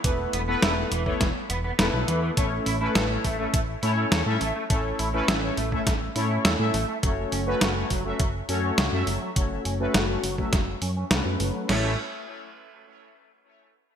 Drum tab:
CC |----------------|----------------|----------------|----------------|
HH |x-x-x-x-x-x-x-x-|x-o-x-o-x-o-x-o-|x-o-x-o-x-o-x-o-|x-o-x-o-x-o-x-o-|
SD |----o---o---o---|----o-------o---|----o---o---o---|----o-------o---|
BD |o------oo-------|o-----o-o-------|o------oo-------|o-----o-o-------|

CC |----------------|x---------------|
HH |x-o-x-o-x-o-x-o-|----------------|
SD |----o---o---o---|o---------------|
BD |o------oo-------|----------------|